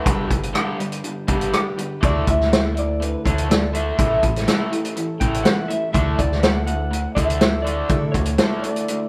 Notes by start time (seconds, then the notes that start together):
Already playing: B4
0.03 G1 G2 D3 G3, kick, closed hi-hat
0.08 G3 D4 G4 B4
0.29 G1 G2 D3 B4, kick, closed hi-hat
0.33 D4 G4
0.43 closed hi-hat
0.53 G2 D3 G3 D4 G4 B4, cross-stick, closed hi-hat
0.78 G2 D3, closed hi-hat
0.92 closed hi-hat
1.04 G2 D3, closed hi-hat
1.27 G1 G2 D3 G3 G4 B4, kick, closed hi-hat
1.32 D4
1.41 closed hi-hat
1.53 G2 D3 G3 D4 G4, cross-stick, closed hi-hat
1.57 B4
1.77 G2 D3 G4 B4, closed hi-hat
1.81 D4
2.01 D2 D3 A3 D4 E4 D5, kick, closed hi-hat
2.05 F#4 A4
2.26 D2 D3 A3 E4 F#4 A4 E5, kick, closed hi-hat
2.41 snare
2.50 D3 A3 E4 F#4 A4, snare, closed hi-hat
2.75 D3 A3 D5, closed hi-hat
3.00 D3 A3 B4, closed hi-hat
3.24 D2 D3 A3 D4 E4 F#4 A4 C#5, kick, closed hi-hat
3.38 closed hi-hat
3.49 D3 A3 E4 F#4 A4 D5, snare, closed hi-hat
3.73 D3 A3 D4 E4 F#4 A4 E5, closed hi-hat
3.98 A1 A2 E3 A3 C#4 E4 A4, kick, closed hi-hat
4.22 A1 A2 E3 A3 C#4 E4 A4, kick, closed hi-hat
4.36 snare, closed hi-hat
4.47 A2 E3 A3 C#4 E4 A4, snare, closed hi-hat
4.71 A2 E3, closed hi-hat
4.85 closed hi-hat
4.96 A2 E3, closed hi-hat
5.19 A1 A2 E3 A3 C#4 E4 A4 G5, kick, closed hi-hat
5.34 closed hi-hat
5.43 A2 E3 A3 C#4 E4 A4 F#5, snare, closed hi-hat
5.68 A2 E3 A3 C#4 E4 A4 E5, closed hi-hat
5.93 D2 D3 A3 D4 E4 F#4 A4 E5, kick, closed hi-hat
6.18 D2 D3 A3 E4 F#4 A4 D5, kick, closed hi-hat
6.32 snare
6.43 D3 A3 E4 F#4 A4 F#5, snare, closed hi-hat
6.67 D3 A3 F#5, closed hi-hat
6.91 D3 A3, closed hi-hat
7.15 D2 D3 A3 D4 E4 F#4 A4 E5, kick, closed hi-hat
7.30 closed hi-hat
7.39 D3 A3 E4 A4, snare, closed hi-hat
7.62 D3 A3 D4 E4 F#4 A4 D5
7.66 closed hi-hat
7.89 D3 A3 E4 F#4 A4, kick, closed hi-hat
8.12 D2 D3 A3 E4 F#4 A4 C#5, kick, closed hi-hat
8.25 closed hi-hat
8.38 D3 A3 D4 E4 F#4 A4, snare, closed hi-hat
8.62 D3 A3 D5, closed hi-hat
8.76 closed hi-hat
8.88 D3 A3, closed hi-hat